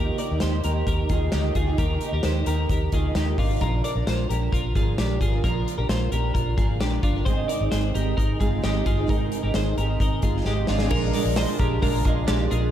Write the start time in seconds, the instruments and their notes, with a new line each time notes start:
Already playing: fingered electric bass D#2, steel-string acoustic guitar D#3 A#3 D#4 G4, clean electric guitar G4 A#4
0.18 clean electric guitar A#4 D5, closed hi-hat
0.29 fingered electric bass D#2, steel-string acoustic guitar A#3 D#4 G4
0.40 fingered electric bass D#2, clean electric guitar G4 C5, snare, closed hi-hat
0.64 fingered electric bass D#2, steel-string acoustic guitar D#3 A#3 D#4 G4, clean electric guitar G4 A#4, closed hi-hat
0.86 fingered electric bass D#2, clean electric guitar G4 A#4, kick, closed hi-hat
1.09 fingered electric bass D#2, steel-string acoustic guitar D#3 A#3 D#4 G4, clean electric guitar F4 G#4, kick, closed hi-hat
1.32 fingered electric bass D2, steel-string acoustic guitar D#3 A#3 D#4 G4, clean electric guitar D#4 G4, snare, closed hi-hat
1.55 fingered electric bass D2, clean electric guitar F4 G#4, kick, closed hi-hat
1.66 steel-string acoustic guitar A#3 D#4 G4
1.78 fingered electric bass D#2, steel-string acoustic guitar D#3 A#3 D#4 G4, clean electric guitar G4 A#4, kick, closed hi-hat
2.01 closed hi-hat
2.11 fingered electric bass D#2, steel-string acoustic guitar A#3 D#4 G4, clean electric guitar G4 A#4
2.23 fingered electric bass D#2, clean electric guitar G4 C5, snare, closed hi-hat
2.46 fingered electric bass D#2, steel-string acoustic guitar D#3 A#3 D#4 G4, clean electric guitar G4 A#4, closed hi-hat
2.69 fingered electric bass D#2, clean electric guitar G4 A#4, kick, closed hi-hat
2.92 fingered electric bass D2, steel-string acoustic guitar D#3 A#3 D#4 G4, clean electric guitar F4 G#4, kick, closed hi-hat
3.15 fingered electric bass D#2, steel-string acoustic guitar D#3 A#3 D#4 G4, clean electric guitar D#4 G4, snare, closed hi-hat
3.38 fingered electric bass G#1, clean electric guitar D4 F4, kick, open hi-hat
3.49 steel-string acoustic guitar A#3 D#4 G4
3.61 fingered electric bass A#1, steel-string acoustic guitar A#2 F3 A#3 D4 A#4, clean electric guitar F4 A#4, kick, closed hi-hat
3.84 clean electric guitar A#4 D5, closed hi-hat
3.95 fingered electric bass A#1, steel-string acoustic guitar A#3 D4 A#4
4.07 fingered electric bass A#1, clean electric guitar F4 C5, snare, closed hi-hat
4.29 fingered electric bass A#1, steel-string acoustic guitar F3 A#3 D4 A#4, clean electric guitar G4 A#4, closed hi-hat
4.52 fingered electric bass A#1, clean electric guitar F4 A#4, kick, closed hi-hat
4.75 fingered electric bass G#1, steel-string acoustic guitar F3 A#3 D4 A#4, clean electric guitar F4 G#4, kick, closed hi-hat
4.97 fingered electric bass A#1, steel-string acoustic guitar F3 A#3 D4 A#4, clean electric guitar D4 G4, snare, closed hi-hat
5.20 fingered electric bass G#1, clean electric guitar F4 G#4, kick, closed hi-hat
5.32 steel-string acoustic guitar A#3 D4 A#4
5.44 fingered electric bass A#1, steel-string acoustic guitar A#2 F3 A#3 D4 A#4, clean electric guitar F4 A#4, kick, closed hi-hat
5.68 closed hi-hat
5.78 fingered electric bass A#1, steel-string acoustic guitar A#3 D4 A#4, clean electric guitar G4 A#4
5.89 fingered electric bass A#1, clean electric guitar F4 C5, snare, closed hi-hat
6.12 fingered electric bass A#1, steel-string acoustic guitar F3 A#3 D4 A#4, clean electric guitar G4 A#4, closed hi-hat
6.34 fingered electric bass A#1, clean electric guitar F4 A#4, kick, closed hi-hat
6.57 fingered electric bass G#1, steel-string acoustic guitar F3 A#3 D4 A#4, clean electric guitar F4 G#4, kick, closed hi-hat
6.80 fingered electric bass A#1, steel-string acoustic guitar F3 A#3 D4, clean electric guitar D4 G4, snare, closed hi-hat
6.84 steel-string acoustic guitar A#4
7.03 fingered electric bass G1, clean electric guitar D4 F4, kick, closed hi-hat
7.15 steel-string acoustic guitar A#3 D4 A#4
7.25 fingered electric bass G#1, steel-string acoustic guitar G#2 D#3 G#3 C4 D#4 G#4, clean electric guitar G#4 C5, kick, closed hi-hat
7.48 clean electric guitar A#4 D5, closed hi-hat
7.60 fingered electric bass G#1, steel-string acoustic guitar G#3 C4 D#4 G#4
7.71 fingered electric bass G#1, clean electric guitar G#4 C5, snare, closed hi-hat
7.95 fingered electric bass G#1, steel-string acoustic guitar G#3 C4 D#4 G#4, clean electric guitar G4 A#4, closed hi-hat
8.17 fingered electric bass G#1, clean electric guitar D#4 A#4, kick, closed hi-hat
8.39 fingered electric bass G1, steel-string acoustic guitar G#3 C4 D#4 G#4, clean electric guitar F4 G#4, kick, closed hi-hat
8.62 fingered electric bass G#1, steel-string acoustic guitar G#3 C4 D#4 G#4, clean electric guitar D#4 G4, snare, closed hi-hat
8.86 fingered electric bass G1, clean electric guitar F4 G#4, kick, closed hi-hat
8.96 steel-string acoustic guitar G#3 C4 D#4 G#4
9.07 fingered electric bass G#1, steel-string acoustic guitar G#2 D#3 G#3 C4 D#4 G#4, clean electric guitar D#4 A#4, kick, closed hi-hat
9.32 closed hi-hat
9.41 fingered electric bass G#1, steel-string acoustic guitar G#3 C4 D#4 G#4, clean electric guitar G4 A#4
9.54 fingered electric bass G#1, clean electric guitar G#4 C5, snare, closed hi-hat
9.76 fingered electric bass G#1, steel-string acoustic guitar G#3 C4 D#4 G#4, clean electric guitar G4 A#4, closed hi-hat
10.00 fingered electric bass G#1, clean electric guitar D#4 A#4, kick, closed hi-hat
10.22 fingered electric bass G1, steel-string acoustic guitar G#3 C4 D#4 G#4, clean electric guitar F4 G#4, kick, closed hi-hat
10.45 fingered electric bass G#1, steel-string acoustic guitar G#3 C4 D#4 G#4, clean electric guitar D#4 G4, snare
10.67 fingered electric bass G#1, clean electric guitar D4 F4, snare
10.79 steel-string acoustic guitar G#3 C4 D#4 G#4, snare
10.89 fingered electric bass A#1, steel-string acoustic guitar F3, synth keys D4 G#4 A#4, clean electric guitar F4 A#4, kick, crash
10.93 steel-string acoustic guitar G#3 D4 F4
11.13 steel-string acoustic guitar A#2 F3 G#3 D4 F4, synth keys D4 G#4 A#4, clean electric guitar A#4 D5, hi-hat pedal, open hi-hat
11.25 fingered electric bass A#1
11.36 synth keys D4 G#4 A#4, clean electric guitar G#4 C5, snare, clap, hi-hat pedal, open hi-hat
11.48 steel-string acoustic guitar G#3 D4 F4
11.59 fingered electric bass A#1, synth keys D4 G#4 A#4, clean electric guitar G4 A#4, kick, hi-hat pedal, open hi-hat
11.82 fingered electric bass A#1, steel-string acoustic guitar F3 G#3 D4 F4, synth keys D4 G#4 A#4, clean electric guitar F4 A#4, kick, hi-hat pedal, open hi-hat
12.05 fingered electric bass A#1, steel-string acoustic guitar F3 G#3 D4 F4, synth keys D4 G#4 A#4, clean electric guitar F4 G#4, kick, hi-hat pedal, open hi-hat
12.27 fingered electric bass A#1, synth keys D4 G#4 A#4, clean electric guitar D4 G4, snare, clap, hi-hat pedal, open hi-hat
12.39 steel-string acoustic guitar G#3 D4 F4
12.50 fingered electric bass A#1, synth keys D4 G#4 A#4, clean electric guitar F4 G#4, hi-hat pedal, open hi-hat